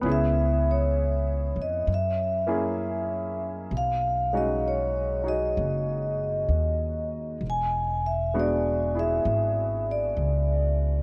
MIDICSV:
0, 0, Header, 1, 4, 480
1, 0, Start_track
1, 0, Tempo, 918836
1, 22, Time_signature, 4, 2, 24, 8
1, 5759, End_track
2, 0, Start_track
2, 0, Title_t, "Vibraphone"
2, 0, Program_c, 0, 11
2, 61, Note_on_c, 0, 76, 85
2, 366, Note_off_c, 0, 76, 0
2, 372, Note_on_c, 0, 73, 69
2, 844, Note_on_c, 0, 75, 65
2, 848, Note_off_c, 0, 73, 0
2, 999, Note_off_c, 0, 75, 0
2, 1014, Note_on_c, 0, 76, 71
2, 1777, Note_off_c, 0, 76, 0
2, 1970, Note_on_c, 0, 77, 86
2, 2284, Note_on_c, 0, 75, 70
2, 2285, Note_off_c, 0, 77, 0
2, 2444, Note_off_c, 0, 75, 0
2, 2444, Note_on_c, 0, 73, 67
2, 2761, Note_on_c, 0, 75, 65
2, 2764, Note_off_c, 0, 73, 0
2, 3695, Note_off_c, 0, 75, 0
2, 3916, Note_on_c, 0, 80, 82
2, 4213, Note_on_c, 0, 76, 67
2, 4219, Note_off_c, 0, 80, 0
2, 4369, Note_off_c, 0, 76, 0
2, 4386, Note_on_c, 0, 74, 72
2, 4694, Note_off_c, 0, 74, 0
2, 4698, Note_on_c, 0, 76, 72
2, 5175, Note_off_c, 0, 76, 0
2, 5179, Note_on_c, 0, 74, 62
2, 5619, Note_off_c, 0, 74, 0
2, 5759, End_track
3, 0, Start_track
3, 0, Title_t, "Grand piano"
3, 0, Program_c, 1, 0
3, 0, Control_c, 1, 64, 127
3, 7, Note_on_c, 1, 59, 50
3, 16, Note_on_c, 1, 61, 44
3, 25, Note_on_c, 1, 64, 47
3, 28, Control_c, 1, 64, 0
3, 34, Note_on_c, 1, 68, 52
3, 113, Control_c, 1, 64, 127
3, 973, Note_off_c, 1, 59, 0
3, 978, Note_off_c, 1, 61, 0
3, 982, Note_off_c, 1, 64, 0
3, 986, Note_off_c, 1, 68, 0
3, 988, Control_c, 1, 64, 0
3, 1088, Control_c, 1, 64, 127
3, 1289, Note_on_c, 1, 58, 44
3, 1290, Note_on_c, 1, 61, 41
3, 1294, Note_on_c, 1, 64, 39
3, 1297, Note_on_c, 1, 68, 51
3, 1941, Note_off_c, 1, 58, 0
3, 1942, Note_off_c, 1, 61, 0
3, 1944, Note_off_c, 1, 64, 0
3, 1945, Note_off_c, 1, 68, 0
3, 1952, Control_c, 1, 64, 0
3, 2032, Control_c, 1, 64, 127
3, 2262, Note_on_c, 1, 56, 42
3, 2265, Note_on_c, 1, 61, 38
3, 2266, Note_on_c, 1, 63, 39
3, 2270, Note_on_c, 1, 66, 44
3, 2726, Note_off_c, 1, 63, 0
3, 2734, Note_off_c, 1, 66, 0
3, 2734, Note_on_c, 1, 63, 36
3, 2742, Note_on_c, 1, 66, 34
3, 2751, Note_on_c, 1, 68, 41
3, 3866, Note_off_c, 1, 63, 0
3, 3870, Note_off_c, 1, 66, 0
3, 3872, Note_off_c, 1, 56, 0
3, 3874, Note_off_c, 1, 61, 0
3, 3875, Note_off_c, 1, 68, 0
3, 3880, Control_c, 1, 64, 0
3, 3965, Control_c, 1, 64, 127
3, 4357, Note_on_c, 1, 56, 41
3, 4359, Note_on_c, 1, 59, 39
3, 4361, Note_on_c, 1, 62, 38
3, 4363, Note_on_c, 1, 66, 46
3, 4675, Note_on_c, 1, 64, 34
3, 4684, Note_on_c, 1, 68, 43
3, 5759, Note_off_c, 1, 56, 0
3, 5759, Note_off_c, 1, 59, 0
3, 5759, Note_off_c, 1, 62, 0
3, 5759, Note_off_c, 1, 64, 0
3, 5759, Note_off_c, 1, 66, 0
3, 5759, Note_off_c, 1, 68, 0
3, 5759, End_track
4, 0, Start_track
4, 0, Title_t, "Upright bass"
4, 0, Program_c, 2, 32
4, 16, Note_on_c, 2, 37, 65
4, 793, Note_off_c, 2, 37, 0
4, 814, Note_on_c, 2, 41, 52
4, 968, Note_off_c, 2, 41, 0
4, 978, Note_on_c, 2, 42, 66
4, 1924, Note_off_c, 2, 42, 0
4, 1939, Note_on_c, 2, 35, 64
4, 2888, Note_off_c, 2, 35, 0
4, 2911, Note_on_c, 2, 30, 65
4, 3372, Note_off_c, 2, 30, 0
4, 3388, Note_on_c, 2, 39, 59
4, 3850, Note_off_c, 2, 39, 0
4, 3869, Note_on_c, 2, 28, 63
4, 4808, Note_off_c, 2, 28, 0
4, 4834, Note_on_c, 2, 32, 72
4, 5289, Note_off_c, 2, 32, 0
4, 5311, Note_on_c, 2, 37, 61
4, 5759, Note_off_c, 2, 37, 0
4, 5759, End_track
0, 0, End_of_file